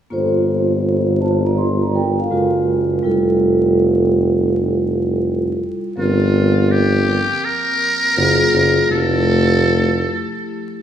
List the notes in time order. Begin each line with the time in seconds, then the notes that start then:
0.10 G1 A#3 F4 A4 C5
1.21 C5 A5
1.45 D5 A#5
1.58 C6
1.82 D5 A#5
1.95 A#4 G5
2.19 A4 F5
2.31 F#1 G#3 F4 F#4 A#4
3.03 F1 G3 E4 F4 A4
5.96 G1 F3 A#3 C4 F4 A#4
6.72 G4
7.45 A#4
8.16 F#1 F#3 A#3 F4 G#4
8.53 F#1
8.88 F1 F3 A3 E4 G4 A4